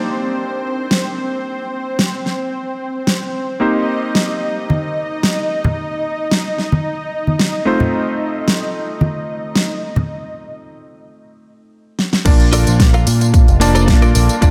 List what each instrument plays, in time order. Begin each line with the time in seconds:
Already playing: electric grand piano A#3 D4 D#4 G4 D5, analog synth pad C4 C5
0.91 snare
1.99 snare
2.26 snare
3.07 snare
3.60 electric grand piano A#3 C4 D#4 G4 C5, analog synth pad D#4 D#5
4.15 snare
4.70 high conga
5.23 snare
5.64 high conga, low conga
6.31 snare
6.58 snare
6.72 high conga
7.27 high conga
7.39 snare
7.65 electric grand piano A3 C4 D#4 F4 C5
7.80 low conga
8.48 snare
9.01 high conga
9.55 snare
9.96 high conga, low conga
11.99 snare
12.13 snare
12.25 picked electric bass A#1, electric grand piano A#3 D4 F4 D5 A5, analog synth pad A#3 F4, kick, closed hi-hat, tambourine, crash
12.40 closed hi-hat, tambourine
12.52 clean electric guitar F4 A4 A#4 D5, open hi-hat, tambourine
12.67 picked electric bass A#1, closed hi-hat, tambourine
12.80 muted clean electric guitar stroke, kick, snare, closed hi-hat, tambourine
12.94 clean electric guitar F4 A4 A#4 F5, closed hi-hat, tambourine
13.07 picked electric bass A#2, open hi-hat, tambourine
13.21 muted clean electric guitar stroke, closed hi-hat, tambourine
13.34 kick, closed hi-hat, tambourine
13.48 picked electric bass F1, closed hi-hat, tambourine
13.60 electric grand piano A#3 D4 F4 D5 A5, open hi-hat, tambourine
13.75 clean electric guitar F4 A4 A#4 C5, closed hi-hat, tambourine
13.88 picked electric bass A#2, kick, snare, closed hi-hat, tambourine
14.02 clean electric guitar F4 A4 A#4 D5, closed hi-hat, tambourine
14.15 picked electric bass A#1, open hi-hat, tambourine
14.29 closed hi-hat, tambourine
14.41 picked electric bass A#1, electric grand piano A#3 D4 F4 D5 A5, kick, closed hi-hat, tambourine